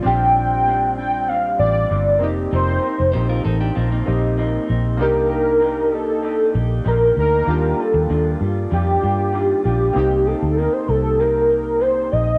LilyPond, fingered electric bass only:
\new Staff \with { instrumentName = "Fingered electric bass" } { \clef bass \time 4/4 \key c \dorian \tempo 4 = 97 bes,,2~ bes,,8 a,,8 g,,8 f,,8 | f,,8 r16 f,,16 bes,,8 a,,8 bes,,8 bes,,4 bes,,8 | c,2~ c,8 bes,,8 bes,,8 d,8 | ees,8 r16 ees,16 ees,8 g,8 f,8 g,4 bes,,8 |
c,8. d,8 r16 c,2 bes,,8 | }